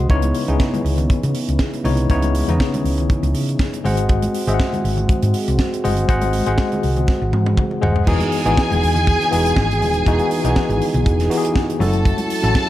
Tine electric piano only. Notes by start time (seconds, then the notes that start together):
Already playing: G#3 G#4 C5 D#5 F#5 C6 D#6
0.09 C#3 B3 D#4 E4 C#5
0.47 C#3 B3 D#4 E4 G#4
1.84 C#3 B3 D#4 E4 C#5
2.10 C#3 B3 D#4 E4 C#5
2.48 C#3 B3 D#4 E4 D#5
3.84 G#3 G#4 C5 D#5 F#5
4.47 G#3 G#4 C5 D#5 E5
4.54 F#5
5.83 G#3 G#4 C5 D#5 F#5
6.08 G#3 G#4 C5 D#5 F#5
6.47 G#3 G#4 C5 D#5 F#5
7.81 G#3 G#4 C5 D#5 F#5
8.07 E3 B3 D#4 F#4 G#4
8.45 E3 B3 D#4 F#4 G#4
9.31 E3 B3 D#4 F#4 G#4
10.07 E3 B3 D#4 F#4 G#4
10.44 E3 B3 D#4 F#4 G#4
11.30 E3 B3 D#4 F#4 G4
11.37 G#4
11.79 F#3 C#4 E4 F#4 A4
12.42 F#3 C#4 E4 F#4 A4